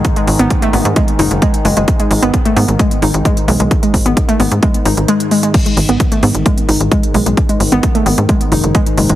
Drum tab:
CC |----------------|----------------|----------------|x---------------|
HH |xxoxxxoxxxoxxxox|xxoxxxoxxxoxxxox|xxoxxxoxxxoxxxox|xxoxxxoxxxoxxxox|
BD |o---o---o---o---|o---o---o---o---|o-o-o---o-------|o---o---o---o---|

CC |----------------|
HH |xxoxxxoxxxoxxxox|
BD |o---o---o---o---|